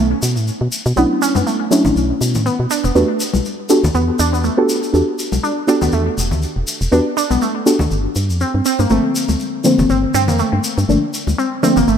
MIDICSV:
0, 0, Header, 1, 5, 480
1, 0, Start_track
1, 0, Tempo, 495868
1, 939, Time_signature, 4, 2, 24, 8
1, 11595, End_track
2, 0, Start_track
2, 0, Title_t, "Synth stab"
2, 0, Program_c, 0, 62
2, 930, Note_on_c, 0, 54, 79
2, 934, Note_on_c, 0, 57, 72
2, 939, Note_on_c, 0, 61, 73
2, 943, Note_on_c, 0, 62, 72
2, 947, Note_on_c, 0, 64, 88
2, 1629, Note_off_c, 0, 54, 0
2, 1631, Note_off_c, 0, 57, 0
2, 1633, Note_off_c, 0, 61, 0
2, 1635, Note_off_c, 0, 62, 0
2, 1637, Note_off_c, 0, 64, 0
2, 1651, Note_on_c, 0, 54, 99
2, 1655, Note_on_c, 0, 57, 91
2, 1659, Note_on_c, 0, 61, 93
2, 1663, Note_on_c, 0, 62, 91
2, 1667, Note_on_c, 0, 64, 108
2, 2602, Note_off_c, 0, 54, 0
2, 2604, Note_off_c, 0, 57, 0
2, 2606, Note_off_c, 0, 61, 0
2, 2608, Note_off_c, 0, 62, 0
2, 2610, Note_off_c, 0, 64, 0
2, 2855, Note_on_c, 0, 59, 77
2, 2857, Note_on_c, 0, 62, 72
2, 2859, Note_on_c, 0, 66, 71
2, 2862, Note_on_c, 0, 67, 71
2, 2864, Note_on_c, 0, 71, 86
2, 2971, Note_off_c, 0, 59, 0
2, 2972, Note_off_c, 0, 62, 0
2, 2973, Note_off_c, 0, 66, 0
2, 2974, Note_off_c, 0, 67, 0
2, 2975, Note_off_c, 0, 71, 0
2, 3575, Note_on_c, 0, 59, 95
2, 3577, Note_on_c, 0, 62, 90
2, 3579, Note_on_c, 0, 66, 89
2, 3582, Note_on_c, 0, 67, 91
2, 3584, Note_on_c, 0, 69, 103
2, 3691, Note_off_c, 0, 59, 0
2, 3692, Note_off_c, 0, 62, 0
2, 3693, Note_off_c, 0, 66, 0
2, 3694, Note_off_c, 0, 67, 0
2, 3695, Note_off_c, 0, 69, 0
2, 4428, Note_on_c, 0, 59, 100
2, 4430, Note_on_c, 0, 62, 86
2, 4432, Note_on_c, 0, 66, 90
2, 4434, Note_on_c, 0, 67, 88
2, 4436, Note_on_c, 0, 69, 111
2, 4752, Note_off_c, 0, 59, 0
2, 4753, Note_off_c, 0, 62, 0
2, 4754, Note_off_c, 0, 66, 0
2, 4755, Note_off_c, 0, 67, 0
2, 4756, Note_off_c, 0, 69, 0
2, 4771, Note_on_c, 0, 59, 74
2, 4775, Note_on_c, 0, 62, 71
2, 4779, Note_on_c, 0, 66, 70
2, 4784, Note_on_c, 0, 67, 74
2, 4788, Note_on_c, 0, 69, 84
2, 5469, Note_off_c, 0, 59, 0
2, 5471, Note_off_c, 0, 62, 0
2, 5473, Note_off_c, 0, 66, 0
2, 5476, Note_off_c, 0, 67, 0
2, 5478, Note_off_c, 0, 69, 0
2, 5491, Note_on_c, 0, 59, 96
2, 5495, Note_on_c, 0, 62, 90
2, 5499, Note_on_c, 0, 66, 94
2, 5504, Note_on_c, 0, 67, 92
2, 5508, Note_on_c, 0, 69, 109
2, 6669, Note_off_c, 0, 59, 0
2, 6671, Note_off_c, 0, 62, 0
2, 6673, Note_off_c, 0, 66, 0
2, 6676, Note_off_c, 0, 67, 0
2, 6678, Note_off_c, 0, 69, 0
2, 6694, Note_on_c, 0, 59, 78
2, 6697, Note_on_c, 0, 62, 71
2, 6699, Note_on_c, 0, 66, 71
2, 6701, Note_on_c, 0, 67, 70
2, 6703, Note_on_c, 0, 71, 87
2, 6811, Note_off_c, 0, 59, 0
2, 6812, Note_off_c, 0, 62, 0
2, 6813, Note_off_c, 0, 66, 0
2, 6814, Note_off_c, 0, 67, 0
2, 6815, Note_off_c, 0, 71, 0
2, 7414, Note_on_c, 0, 59, 97
2, 7416, Note_on_c, 0, 62, 90
2, 7418, Note_on_c, 0, 66, 91
2, 7421, Note_on_c, 0, 67, 90
2, 7422, Note_on_c, 0, 69, 107
2, 7530, Note_off_c, 0, 59, 0
2, 7532, Note_off_c, 0, 62, 0
2, 7532, Note_off_c, 0, 66, 0
2, 7534, Note_off_c, 0, 67, 0
2, 7535, Note_off_c, 0, 69, 0
2, 8610, Note_on_c, 0, 50, 76
2, 8615, Note_on_c, 0, 53, 73
2, 8619, Note_on_c, 0, 57, 70
2, 8623, Note_on_c, 0, 58, 74
2, 8628, Note_on_c, 0, 60, 85
2, 9309, Note_off_c, 0, 50, 0
2, 9311, Note_off_c, 0, 53, 0
2, 9313, Note_off_c, 0, 57, 0
2, 9316, Note_off_c, 0, 58, 0
2, 9318, Note_off_c, 0, 60, 0
2, 9331, Note_on_c, 0, 50, 98
2, 9335, Note_on_c, 0, 53, 88
2, 9339, Note_on_c, 0, 57, 90
2, 9344, Note_on_c, 0, 58, 93
2, 9348, Note_on_c, 0, 60, 108
2, 10509, Note_off_c, 0, 50, 0
2, 10512, Note_off_c, 0, 53, 0
2, 10513, Note_off_c, 0, 57, 0
2, 10516, Note_off_c, 0, 58, 0
2, 10518, Note_off_c, 0, 60, 0
2, 10535, Note_on_c, 0, 50, 80
2, 10538, Note_on_c, 0, 53, 72
2, 10539, Note_on_c, 0, 57, 73
2, 10541, Note_on_c, 0, 58, 73
2, 10544, Note_on_c, 0, 62, 84
2, 10651, Note_off_c, 0, 50, 0
2, 10652, Note_off_c, 0, 53, 0
2, 10653, Note_off_c, 0, 57, 0
2, 10654, Note_off_c, 0, 58, 0
2, 10655, Note_off_c, 0, 62, 0
2, 11255, Note_on_c, 0, 50, 103
2, 11257, Note_on_c, 0, 53, 92
2, 11259, Note_on_c, 0, 57, 88
2, 11261, Note_on_c, 0, 58, 90
2, 11264, Note_on_c, 0, 60, 104
2, 11371, Note_off_c, 0, 50, 0
2, 11372, Note_off_c, 0, 53, 0
2, 11373, Note_off_c, 0, 57, 0
2, 11374, Note_off_c, 0, 58, 0
2, 11375, Note_off_c, 0, 60, 0
2, 11595, End_track
3, 0, Start_track
3, 0, Title_t, "Synth pluck"
3, 0, Program_c, 1, 84
3, 939, Note_on_c, 1, 59, 99
3, 994, Note_off_c, 1, 59, 0
3, 1179, Note_on_c, 1, 61, 104
3, 1234, Note_off_c, 1, 61, 0
3, 1311, Note_on_c, 1, 59, 78
3, 1385, Note_off_c, 1, 59, 0
3, 1419, Note_on_c, 1, 57, 86
3, 1510, Note_off_c, 1, 57, 0
3, 2379, Note_on_c, 1, 59, 99
3, 2434, Note_off_c, 1, 59, 0
3, 2619, Note_on_c, 1, 62, 101
3, 2674, Note_off_c, 1, 62, 0
3, 2752, Note_on_c, 1, 59, 80
3, 2826, Note_off_c, 1, 59, 0
3, 2860, Note_on_c, 1, 57, 80
3, 2950, Note_off_c, 1, 57, 0
3, 3820, Note_on_c, 1, 59, 99
3, 3874, Note_off_c, 1, 59, 0
3, 4060, Note_on_c, 1, 62, 102
3, 4114, Note_off_c, 1, 62, 0
3, 4193, Note_on_c, 1, 59, 73
3, 4266, Note_off_c, 1, 59, 0
3, 4300, Note_on_c, 1, 57, 84
3, 4391, Note_off_c, 1, 57, 0
3, 5260, Note_on_c, 1, 62, 85
3, 5350, Note_off_c, 1, 62, 0
3, 5500, Note_on_c, 1, 62, 99
3, 5554, Note_off_c, 1, 62, 0
3, 5633, Note_on_c, 1, 59, 78
3, 5706, Note_off_c, 1, 59, 0
3, 5741, Note_on_c, 1, 57, 82
3, 5831, Note_off_c, 1, 57, 0
3, 6700, Note_on_c, 1, 62, 84
3, 6790, Note_off_c, 1, 62, 0
3, 6939, Note_on_c, 1, 62, 101
3, 6994, Note_off_c, 1, 62, 0
3, 7073, Note_on_c, 1, 59, 81
3, 7146, Note_off_c, 1, 59, 0
3, 7179, Note_on_c, 1, 57, 87
3, 7270, Note_off_c, 1, 57, 0
3, 8139, Note_on_c, 1, 60, 83
3, 8230, Note_off_c, 1, 60, 0
3, 8379, Note_on_c, 1, 60, 101
3, 8434, Note_off_c, 1, 60, 0
3, 8513, Note_on_c, 1, 58, 76
3, 8586, Note_off_c, 1, 58, 0
3, 8620, Note_on_c, 1, 57, 83
3, 8710, Note_off_c, 1, 57, 0
3, 9581, Note_on_c, 1, 60, 80
3, 9671, Note_off_c, 1, 60, 0
3, 9820, Note_on_c, 1, 60, 102
3, 9874, Note_off_c, 1, 60, 0
3, 9953, Note_on_c, 1, 58, 75
3, 10026, Note_off_c, 1, 58, 0
3, 10060, Note_on_c, 1, 57, 84
3, 10150, Note_off_c, 1, 57, 0
3, 11020, Note_on_c, 1, 60, 83
3, 11110, Note_off_c, 1, 60, 0
3, 11259, Note_on_c, 1, 60, 102
3, 11313, Note_off_c, 1, 60, 0
3, 11391, Note_on_c, 1, 58, 79
3, 11465, Note_off_c, 1, 58, 0
3, 11499, Note_on_c, 1, 57, 78
3, 11590, Note_off_c, 1, 57, 0
3, 11595, End_track
4, 0, Start_track
4, 0, Title_t, "FM bass"
4, 0, Program_c, 2, 39
4, 0, Note_on_c, 2, 35, 85
4, 138, Note_off_c, 2, 35, 0
4, 219, Note_on_c, 2, 47, 79
4, 351, Note_on_c, 2, 45, 93
4, 366, Note_off_c, 2, 47, 0
4, 491, Note_off_c, 2, 45, 0
4, 591, Note_on_c, 2, 47, 78
4, 658, Note_off_c, 2, 47, 0
4, 831, Note_on_c, 2, 47, 108
4, 898, Note_off_c, 2, 47, 0
4, 939, Note_on_c, 2, 35, 94
4, 1021, Note_off_c, 2, 35, 0
4, 1311, Note_on_c, 2, 42, 83
4, 1378, Note_off_c, 2, 42, 0
4, 1791, Note_on_c, 2, 33, 86
4, 1858, Note_off_c, 2, 33, 0
4, 1899, Note_on_c, 2, 35, 85
4, 2058, Note_off_c, 2, 35, 0
4, 2140, Note_on_c, 2, 47, 84
4, 2272, Note_on_c, 2, 45, 93
4, 2286, Note_off_c, 2, 47, 0
4, 2411, Note_off_c, 2, 45, 0
4, 2513, Note_on_c, 2, 47, 77
4, 2579, Note_off_c, 2, 47, 0
4, 2753, Note_on_c, 2, 28, 104
4, 2819, Note_off_c, 2, 28, 0
4, 2860, Note_on_c, 2, 40, 99
4, 2942, Note_off_c, 2, 40, 0
4, 3233, Note_on_c, 2, 35, 85
4, 3299, Note_off_c, 2, 35, 0
4, 3713, Note_on_c, 2, 38, 84
4, 3779, Note_off_c, 2, 38, 0
4, 3820, Note_on_c, 2, 40, 85
4, 3978, Note_off_c, 2, 40, 0
4, 4061, Note_on_c, 2, 40, 89
4, 4352, Note_off_c, 2, 40, 0
4, 4779, Note_on_c, 2, 40, 95
4, 4862, Note_off_c, 2, 40, 0
4, 5154, Note_on_c, 2, 35, 83
4, 5219, Note_off_c, 2, 35, 0
4, 5633, Note_on_c, 2, 38, 86
4, 5699, Note_off_c, 2, 38, 0
4, 5741, Note_on_c, 2, 40, 86
4, 5899, Note_off_c, 2, 40, 0
4, 5980, Note_on_c, 2, 28, 81
4, 6114, Note_on_c, 2, 38, 91
4, 6128, Note_off_c, 2, 28, 0
4, 6253, Note_off_c, 2, 38, 0
4, 6353, Note_on_c, 2, 28, 79
4, 6419, Note_off_c, 2, 28, 0
4, 6593, Note_on_c, 2, 28, 105
4, 6659, Note_off_c, 2, 28, 0
4, 6701, Note_on_c, 2, 40, 96
4, 6782, Note_off_c, 2, 40, 0
4, 7072, Note_on_c, 2, 35, 84
4, 7139, Note_off_c, 2, 35, 0
4, 7551, Note_on_c, 2, 38, 88
4, 7618, Note_off_c, 2, 38, 0
4, 7659, Note_on_c, 2, 31, 84
4, 7818, Note_off_c, 2, 31, 0
4, 7898, Note_on_c, 2, 43, 80
4, 8031, Note_on_c, 2, 41, 94
4, 8045, Note_off_c, 2, 43, 0
4, 8171, Note_off_c, 2, 41, 0
4, 8271, Note_on_c, 2, 43, 78
4, 8338, Note_off_c, 2, 43, 0
4, 8512, Note_on_c, 2, 43, 102
4, 8579, Note_off_c, 2, 43, 0
4, 8620, Note_on_c, 2, 31, 101
4, 8702, Note_off_c, 2, 31, 0
4, 8992, Note_on_c, 2, 38, 85
4, 9059, Note_off_c, 2, 38, 0
4, 9472, Note_on_c, 2, 29, 85
4, 9539, Note_off_c, 2, 29, 0
4, 9579, Note_on_c, 2, 31, 85
4, 9738, Note_off_c, 2, 31, 0
4, 9819, Note_on_c, 2, 43, 81
4, 9952, Note_on_c, 2, 41, 92
4, 9967, Note_off_c, 2, 43, 0
4, 10092, Note_off_c, 2, 41, 0
4, 10192, Note_on_c, 2, 43, 78
4, 10259, Note_off_c, 2, 43, 0
4, 10432, Note_on_c, 2, 43, 105
4, 10499, Note_off_c, 2, 43, 0
4, 10540, Note_on_c, 2, 31, 94
4, 10622, Note_off_c, 2, 31, 0
4, 10912, Note_on_c, 2, 38, 85
4, 10979, Note_off_c, 2, 38, 0
4, 11392, Note_on_c, 2, 29, 86
4, 11459, Note_off_c, 2, 29, 0
4, 11499, Note_on_c, 2, 31, 87
4, 11595, Note_off_c, 2, 31, 0
4, 11595, End_track
5, 0, Start_track
5, 0, Title_t, "Drums"
5, 216, Note_on_c, 9, 82, 103
5, 313, Note_off_c, 9, 82, 0
5, 353, Note_on_c, 9, 82, 55
5, 450, Note_off_c, 9, 82, 0
5, 458, Note_on_c, 9, 82, 43
5, 555, Note_off_c, 9, 82, 0
5, 697, Note_on_c, 9, 82, 93
5, 794, Note_off_c, 9, 82, 0
5, 831, Note_on_c, 9, 82, 55
5, 928, Note_off_c, 9, 82, 0
5, 936, Note_on_c, 9, 82, 40
5, 1032, Note_off_c, 9, 82, 0
5, 1184, Note_on_c, 9, 82, 93
5, 1280, Note_off_c, 9, 82, 0
5, 1307, Note_on_c, 9, 63, 73
5, 1313, Note_on_c, 9, 82, 51
5, 1404, Note_off_c, 9, 63, 0
5, 1410, Note_off_c, 9, 82, 0
5, 1422, Note_on_c, 9, 82, 41
5, 1519, Note_off_c, 9, 82, 0
5, 1664, Note_on_c, 9, 82, 94
5, 1761, Note_off_c, 9, 82, 0
5, 1788, Note_on_c, 9, 64, 91
5, 1793, Note_on_c, 9, 82, 51
5, 1885, Note_off_c, 9, 64, 0
5, 1890, Note_off_c, 9, 82, 0
5, 1902, Note_on_c, 9, 82, 39
5, 1999, Note_off_c, 9, 82, 0
5, 2144, Note_on_c, 9, 82, 102
5, 2241, Note_off_c, 9, 82, 0
5, 2270, Note_on_c, 9, 82, 59
5, 2277, Note_on_c, 9, 64, 75
5, 2367, Note_off_c, 9, 82, 0
5, 2374, Note_off_c, 9, 64, 0
5, 2382, Note_on_c, 9, 82, 38
5, 2479, Note_off_c, 9, 82, 0
5, 2619, Note_on_c, 9, 82, 90
5, 2716, Note_off_c, 9, 82, 0
5, 2752, Note_on_c, 9, 82, 51
5, 2849, Note_off_c, 9, 82, 0
5, 2863, Note_on_c, 9, 82, 37
5, 2960, Note_off_c, 9, 82, 0
5, 3098, Note_on_c, 9, 82, 95
5, 3195, Note_off_c, 9, 82, 0
5, 3228, Note_on_c, 9, 63, 72
5, 3235, Note_on_c, 9, 82, 52
5, 3325, Note_off_c, 9, 63, 0
5, 3332, Note_off_c, 9, 82, 0
5, 3341, Note_on_c, 9, 82, 41
5, 3438, Note_off_c, 9, 82, 0
5, 3576, Note_on_c, 9, 82, 100
5, 3673, Note_off_c, 9, 82, 0
5, 3717, Note_on_c, 9, 82, 57
5, 3720, Note_on_c, 9, 64, 92
5, 3814, Note_off_c, 9, 82, 0
5, 3817, Note_off_c, 9, 64, 0
5, 3820, Note_on_c, 9, 82, 40
5, 3916, Note_off_c, 9, 82, 0
5, 4057, Note_on_c, 9, 82, 98
5, 4154, Note_off_c, 9, 82, 0
5, 4200, Note_on_c, 9, 82, 51
5, 4297, Note_off_c, 9, 82, 0
5, 4298, Note_on_c, 9, 82, 37
5, 4395, Note_off_c, 9, 82, 0
5, 4540, Note_on_c, 9, 82, 93
5, 4637, Note_off_c, 9, 82, 0
5, 4675, Note_on_c, 9, 82, 54
5, 4771, Note_off_c, 9, 82, 0
5, 4783, Note_on_c, 9, 82, 37
5, 4880, Note_off_c, 9, 82, 0
5, 5022, Note_on_c, 9, 82, 87
5, 5118, Note_off_c, 9, 82, 0
5, 5152, Note_on_c, 9, 63, 64
5, 5154, Note_on_c, 9, 82, 48
5, 5249, Note_off_c, 9, 63, 0
5, 5251, Note_off_c, 9, 82, 0
5, 5266, Note_on_c, 9, 82, 37
5, 5363, Note_off_c, 9, 82, 0
5, 5501, Note_on_c, 9, 82, 85
5, 5598, Note_off_c, 9, 82, 0
5, 5630, Note_on_c, 9, 64, 84
5, 5631, Note_on_c, 9, 82, 53
5, 5727, Note_off_c, 9, 64, 0
5, 5728, Note_off_c, 9, 82, 0
5, 5730, Note_on_c, 9, 82, 35
5, 5827, Note_off_c, 9, 82, 0
5, 5983, Note_on_c, 9, 82, 84
5, 6080, Note_off_c, 9, 82, 0
5, 6110, Note_on_c, 9, 64, 70
5, 6116, Note_on_c, 9, 82, 47
5, 6207, Note_off_c, 9, 64, 0
5, 6212, Note_off_c, 9, 82, 0
5, 6216, Note_on_c, 9, 82, 37
5, 6312, Note_off_c, 9, 82, 0
5, 6460, Note_on_c, 9, 82, 92
5, 6557, Note_off_c, 9, 82, 0
5, 6594, Note_on_c, 9, 82, 51
5, 6691, Note_off_c, 9, 82, 0
5, 6701, Note_on_c, 9, 82, 36
5, 6798, Note_off_c, 9, 82, 0
5, 6946, Note_on_c, 9, 82, 88
5, 7043, Note_off_c, 9, 82, 0
5, 7075, Note_on_c, 9, 63, 58
5, 7075, Note_on_c, 9, 82, 49
5, 7172, Note_off_c, 9, 63, 0
5, 7172, Note_off_c, 9, 82, 0
5, 7178, Note_on_c, 9, 82, 36
5, 7275, Note_off_c, 9, 82, 0
5, 7423, Note_on_c, 9, 82, 92
5, 7520, Note_off_c, 9, 82, 0
5, 7542, Note_on_c, 9, 64, 90
5, 7552, Note_on_c, 9, 82, 52
5, 7639, Note_off_c, 9, 64, 0
5, 7648, Note_off_c, 9, 82, 0
5, 7655, Note_on_c, 9, 82, 36
5, 7752, Note_off_c, 9, 82, 0
5, 7895, Note_on_c, 9, 82, 90
5, 7991, Note_off_c, 9, 82, 0
5, 8033, Note_on_c, 9, 82, 45
5, 8130, Note_off_c, 9, 82, 0
5, 8136, Note_on_c, 9, 82, 37
5, 8233, Note_off_c, 9, 82, 0
5, 8377, Note_on_c, 9, 82, 88
5, 8473, Note_off_c, 9, 82, 0
5, 8510, Note_on_c, 9, 82, 54
5, 8607, Note_off_c, 9, 82, 0
5, 8614, Note_on_c, 9, 82, 38
5, 8710, Note_off_c, 9, 82, 0
5, 8861, Note_on_c, 9, 82, 92
5, 8957, Note_off_c, 9, 82, 0
5, 8989, Note_on_c, 9, 63, 62
5, 8990, Note_on_c, 9, 82, 47
5, 9086, Note_off_c, 9, 63, 0
5, 9087, Note_off_c, 9, 82, 0
5, 9096, Note_on_c, 9, 82, 32
5, 9193, Note_off_c, 9, 82, 0
5, 9334, Note_on_c, 9, 82, 86
5, 9430, Note_off_c, 9, 82, 0
5, 9472, Note_on_c, 9, 82, 47
5, 9477, Note_on_c, 9, 64, 86
5, 9569, Note_off_c, 9, 82, 0
5, 9574, Note_off_c, 9, 64, 0
5, 9580, Note_on_c, 9, 82, 35
5, 9677, Note_off_c, 9, 82, 0
5, 9819, Note_on_c, 9, 82, 87
5, 9916, Note_off_c, 9, 82, 0
5, 9951, Note_on_c, 9, 64, 78
5, 9955, Note_on_c, 9, 82, 49
5, 10048, Note_off_c, 9, 64, 0
5, 10052, Note_off_c, 9, 82, 0
5, 10054, Note_on_c, 9, 82, 35
5, 10151, Note_off_c, 9, 82, 0
5, 10298, Note_on_c, 9, 82, 88
5, 10395, Note_off_c, 9, 82, 0
5, 10436, Note_on_c, 9, 82, 51
5, 10533, Note_off_c, 9, 82, 0
5, 10548, Note_on_c, 9, 82, 36
5, 10645, Note_off_c, 9, 82, 0
5, 10780, Note_on_c, 9, 82, 89
5, 10877, Note_off_c, 9, 82, 0
5, 10913, Note_on_c, 9, 63, 55
5, 10920, Note_on_c, 9, 82, 50
5, 11009, Note_off_c, 9, 63, 0
5, 11017, Note_off_c, 9, 82, 0
5, 11025, Note_on_c, 9, 82, 37
5, 11122, Note_off_c, 9, 82, 0
5, 11264, Note_on_c, 9, 82, 82
5, 11361, Note_off_c, 9, 82, 0
5, 11389, Note_on_c, 9, 82, 53
5, 11397, Note_on_c, 9, 64, 88
5, 11486, Note_off_c, 9, 82, 0
5, 11493, Note_off_c, 9, 64, 0
5, 11498, Note_on_c, 9, 82, 35
5, 11594, Note_off_c, 9, 82, 0
5, 11595, End_track
0, 0, End_of_file